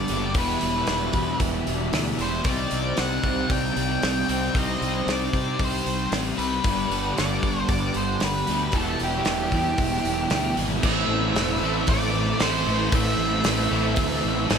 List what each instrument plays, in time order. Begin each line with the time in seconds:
Already playing: distorted electric guitar G2 D3, overdriven electric guitar G2 D3 G3 B3 D4, analog synth pad B3 G4 F#5, lead electric guitar D5
0.08 fingered electric bass F#1, distorted electric guitar D3 G3, open hi-hat
0.13 distorted electric guitar G2
0.34 fingered electric bass E1, distorted electric guitar E2 B2 E3, overdriven electric guitar E3 G3 B3 E4, analog synth pad D4 E5, kick, open hi-hat
0.38 lead electric guitar B4
0.61 fingered electric bass E1, distorted electric guitar B2 E3, open hi-hat
0.87 fingered electric bass E1, distorted electric guitar E2 B2 E3, snare, open hi-hat
1.13 fingered electric bass E2, distorted electric guitar B2 E3, kick, open hi-hat
1.40 fingered electric bass E1, distorted electric guitar E2 B2 E3, kick, open hi-hat
1.66 fingered electric bass E1, distorted electric guitar B2 E3, open hi-hat
1.92 fingered electric bass D2, distorted electric guitar E2 B2 E3, snare, open hi-hat
2.17 fingered electric bass E1, distorted electric guitar B2 E3, lead electric guitar C5, open hi-hat
2.22 distorted electric guitar E2
2.44 fingered electric bass C2, distorted electric guitar C3 G3 C4, overdriven electric guitar C3 G3, analog synth pad C4 D#4 D5, lead electric guitar D5, kick, open hi-hat
2.48 overdriven electric guitar C4 D#4
2.70 fingered electric bass C2, distorted electric guitar G3 C4, open hi-hat
2.96 fingered electric bass C2, distorted electric guitar C3 G3 C4, lead electric guitar F#5, snare, open hi-hat
3.23 fingered electric bass C2, distorted electric guitar G3 C4, kick, open hi-hat
3.49 fingered electric bass C2, distorted electric guitar C3 G3 C4, lead electric guitar G5, kick, open hi-hat
3.74 fingered electric bass C2, distorted electric guitar G3 C4, open hi-hat
4.01 fingered electric bass C2, distorted electric guitar C3 G3 C4, snare, open hi-hat
4.27 fingered electric bass C2, distorted electric guitar G3 C4, lead electric guitar G5, open hi-hat
4.32 distorted electric guitar C3
4.53 fingered electric bass C2, distorted electric guitar C3 G3 C4, analog synth pad C5, kick, open hi-hat
4.58 lead electric guitar D#5
4.80 fingered electric bass C2, distorted electric guitar G3 C4, open hi-hat
5.05 fingered electric bass C2, distorted electric guitar C3 G3 C4, snare, open hi-hat
5.12 lead electric guitar D5
5.32 fingered electric bass C3, distorted electric guitar G3 C4, kick, open hi-hat
5.59 fingered electric bass C2, distorted electric guitar C3 G3 C4, kick, open hi-hat
5.64 lead electric guitar C5
5.85 fingered electric bass C2, distorted electric guitar G3 C4, open hi-hat
6.10 fingered electric bass A1, distorted electric guitar C3 G3 C4, snare, open hi-hat
6.37 fingered electric bass C2, distorted electric guitar C3 G3 C4, lead electric guitar B4, open hi-hat
6.63 fingered electric bass G1, distorted electric guitar G2 D3 G3, overdriven electric guitar G2 D3 G3, analog synth pad B3 G4 F#5, kick, open hi-hat
6.67 overdriven electric guitar B3 D4
6.89 fingered electric bass G1, distorted electric guitar D3 G3, open hi-hat
7.15 fingered electric bass G1, distorted electric guitar G2 D3 G3, lead electric guitar D5, snare, open hi-hat
7.43 fingered electric bass G1, distorted electric guitar D3 G3, kick, open hi-hat
7.69 fingered electric bass G1, distorted electric guitar G2 D3 G3, lead electric guitar D5, kick, open hi-hat
7.94 fingered electric bass G1, distorted electric guitar D3 G3, lead electric guitar C5, open hi-hat
8.20 fingered electric bass G1, distorted electric guitar G2 D3 G3, lead electric guitar B4, snare, open hi-hat
8.47 fingered electric bass D2, distorted electric guitar D3 G3, open hi-hat
8.52 distorted electric guitar G2
8.72 fingered electric bass E1, distorted electric guitar E2 B2 E3, overdriven electric guitar E3 G3 B3, analog synth pad D4 E5, lead electric guitar A4, kick, open hi-hat
8.76 overdriven electric guitar E4
9.00 fingered electric bass E1, distorted electric guitar B2 E3, open hi-hat
9.04 lead electric guitar G4
9.25 fingered electric bass E1, distorted electric guitar E2 B2 E3, snare, open hi-hat
9.52 fingered electric bass E2, distorted electric guitar B2 E3, kick, open hi-hat
9.78 fingered electric bass E1, distorted electric guitar E2 B2 E3, kick, open hi-hat
10.05 fingered electric bass E1, distorted electric guitar B2 E3, open hi-hat
10.30 fingered electric bass D2, distorted electric guitar E2 B2 E3, snare, open hi-hat
10.57 fingered electric bass G#1, distorted electric guitar B2 E3, open hi-hat
10.61 distorted electric guitar E2
10.82 fingered electric bass A1, overdriven electric guitar A2 E3 A3 C4 E4, distorted electric guitar A2 E3 A3, analog synth pad A4 C5 B5, lead electric guitar E5, kick, crash
11.08 fingered electric bass A1
11.35 fingered electric bass E1, distorted electric guitar A2 E3, overdriven electric guitar E3 A3 C4 E4, snare, open hi-hat
11.39 distorted electric guitar A3
11.62 fingered electric bass A1, distorted electric guitar A2 E3 A3, overdriven electric guitar A3 C4 E4
11.87 fingered electric bass A1, lead electric guitar D5, kick, open hi-hat
12.40 fingered electric bass A1, overdriven electric guitar A2 E3 A3 C4 E4, distorted electric guitar A2 E3 A3, lead electric guitar C5, snare, open hi-hat
12.66 fingered electric bass A1, distorted electric guitar E3 A3, overdriven electric guitar A3 C4 E4
12.92 fingered electric bass A1, overdriven electric guitar A2 E3 A3 C4 E4, distorted electric guitar A2 E3 A3, lead electric guitar E5, kick, open hi-hat
13.19 fingered electric bass A1
13.44 fingered electric bass A1, distorted electric guitar A2 E3 A3, overdriven electric guitar E3 A3 C4 E4, snare, open hi-hat
13.70 fingered electric bass A1, distorted electric guitar A2 E3 A3, overdriven electric guitar A3 C4 E4
13.96 fingered electric bass D2, kick, open hi-hat
14.25 fingered electric bass A1
14.47 fingered electric bass A1, overdriven electric guitar A2 E3 A3 C4, distorted electric guitar A2 E3, snare, open hi-hat
14.52 distorted electric guitar A3, overdriven electric guitar E4